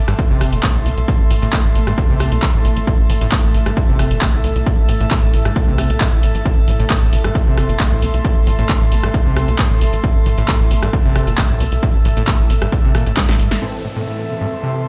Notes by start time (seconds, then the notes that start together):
Already playing: A2 A3 A4 E5 A5
0.00 C6
0.08 A1 G2, cross-stick, closed hi-hat
0.19 kick, closed hi-hat
0.30 G1 C3
0.41 G1, cross-stick, open hi-hat
0.53 G1 A2, closed hi-hat
0.63 A2, kick, clap, closed hi-hat
0.75 C2 A2
0.86 C2 C3, open hi-hat
0.97 C2, closed hi-hat
1.08 A2, kick, closed hi-hat
1.20 A1
1.31 A1 A2, open hi-hat
1.42 A1 A2, closed hi-hat
1.53 A2, kick, clap, closed hi-hat
1.65 A1
1.75 A1 C3, open hi-hat
1.87 A1 G2, cross-stick, closed hi-hat
1.98 kick, closed hi-hat
2.10 C2 C3
2.20 C2, cross-stick, open hi-hat
2.32 C2 A2, closed hi-hat
2.42 A2, kick, clap, closed hi-hat
2.54 A1 A2
2.65 A1 C3, open hi-hat
2.77 A1, closed hi-hat
2.87 A2, kick, closed hi-hat
2.99 A1
3.10 A1 A2, open hi-hat
3.21 A1 A2, closed hi-hat
3.32 A2, kick, clap, closed hi-hat
3.44 A1
3.54 A1 C3 E6, open hi-hat
3.66 A1 G2, cross-stick, closed hi-hat
3.77 kick, closed hi-hat
3.88 G1 C3
3.99 G1, cross-stick, open hi-hat
4.11 G1 A2, closed hi-hat
4.22 A2, kick, clap, closed hi-hat
4.33 C2 A2
4.44 C2 C3, open hi-hat
4.56 C2, closed hi-hat
4.66 A2, kick, closed hi-hat
4.78 A1
4.89 A1 A2, open hi-hat
5.00 A1 A2, closed hi-hat
5.11 A2, kick, clap, closed hi-hat
5.23 A1
5.34 A1 C3, open hi-hat
5.45 A1 G2, cross-stick, closed hi-hat
5.56 kick, closed hi-hat
5.68 C2 C3
5.78 C2, cross-stick, open hi-hat
5.90 C2 A2, closed hi-hat
6.01 A2, kick, clap, open hi-hat
6.12 A1 A2
6.23 A1 C3, open hi-hat
6.35 A1, closed hi-hat
6.46 A2, kick, closed hi-hat
6.57 A1
6.68 A1 A2, open hi-hat
6.80 A1 A2, closed hi-hat
6.90 A2, kick, clap, closed hi-hat
7.02 A1
7.13 A1 C3 C6, open hi-hat
7.24 A1 G2, cross-stick, closed hi-hat
7.35 kick, closed hi-hat
7.47 G1 C3
7.57 G1, cross-stick, open hi-hat
7.69 G1 A2, closed hi-hat
7.80 A2, kick, clap, closed hi-hat
7.91 C2 A2
8.02 C2 C3, open hi-hat
8.14 C2, closed hi-hat
8.25 A2, kick, closed hi-hat
8.36 A1
8.47 A1 A2, open hi-hat
8.59 A1 A2, closed hi-hat
8.69 A2, kick, clap, closed hi-hat
8.81 A1
8.92 A1 C3, open hi-hat
9.03 A1 G2, cross-stick, closed hi-hat
9.14 kick, closed hi-hat
9.26 C2 C3
9.37 C2, cross-stick, open hi-hat
9.48 C2 A2, closed hi-hat
9.59 A2, kick, clap, closed hi-hat
9.71 A1 A2
9.81 A1 C3, open hi-hat
9.93 A1, closed hi-hat
10.04 A2, kick, closed hi-hat
10.15 A1
10.26 A1 A2, open hi-hat
10.38 A1 A2, closed hi-hat
10.48 A2, kick, clap, closed hi-hat
10.60 A1
10.71 A1 C3 E6, open hi-hat
10.82 A1 G2, cross-stick, closed hi-hat
10.93 kick, closed hi-hat
11.05 G1 C3
11.16 G1, cross-stick, open hi-hat
11.27 G1 A2, closed hi-hat
11.38 A2, kick, clap, closed hi-hat
11.50 C2 A2
11.60 C2 C3, open hi-hat
11.72 C2, closed hi-hat
11.83 A2, kick, closed hi-hat
11.94 A1
12.05 A1 A2, open hi-hat
12.17 A1 A2, closed hi-hat
12.28 A2, kick, clap, closed hi-hat
12.39 A1
12.50 A1 C3, open hi-hat
12.62 A1 G2, cross-stick, closed hi-hat
12.72 kick, closed hi-hat
12.84 A1 C3
12.95 A1 A#2, cross-stick, open hi-hat
13.06 A1 A2, closed hi-hat
13.17 A2, kick, snare, clap, open hi-hat
13.29 A1 A2, snare
13.39 A1 G2, open hi-hat
13.51 A1, snare, closed hi-hat
13.62 A2 E3 C4 A4, downlifter
13.73 E5
13.84 A2
13.96 A2
14.04 A2 A5
14.18 C6
14.29 C3
14.41 G2
14.63 C3